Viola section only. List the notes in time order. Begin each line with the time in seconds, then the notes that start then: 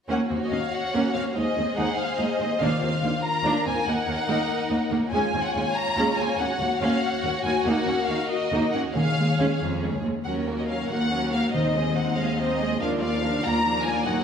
0.09 A#3 C#4
0.30 A#3 C4
0.51 A#3 C#4
0.94 A#3 C#4
1.14 A#3 C4
1.35 G#3 D#4
1.56 G#3 C4
1.75 G#3 D#4
2.18 G#3 D#4
2.40 G#3 C4
2.60 A#3 D4
2.83 A#3 C4
3.04 A#3 D4
3.44 A#3 D4
3.65 A#3 C4
3.88 A#3 D#4
4.08 A#3
4.27 A#3 D#4
4.70 A#3 D#4
4.92 A#3
5.13 G#3 C#4
5.34 G#3 C4
5.57 G#3 C#4
5.98 G#3 C#4
6.19 G#3 C4
6.40 A#3 C#4
6.61 A#3
6.82 A#3 C#4
7.24 A#3 C#4
7.45 A#3
7.67 A#3 D#4
7.88 A#3 C#4
8.10 A#3 D#4
8.52 A#3 D#4
8.75 A#3 C#4
8.96 G#3 C#4
9.19 G#3
9.39 G#3 C#4
9.83 G#3 C#4
10.05 G#3
10.27 F#3 C#4
10.48 A#3
10.69 F#3 C#4
10.90 A#3
11.12 F#3 C#4
11.33 A#3
11.54 C4 D#4
11.75 G#3 C4
11.96 C4 D#4
12.16 G#3 C4
12.38 C4 D#4
12.61 G#3 C4
12.80 F3 D4
13.02 A#3 F4
13.23 F3 D4
13.44 A#3 F4
13.66 F3 D4
13.86 A#3 F4
14.06 F#3 D#4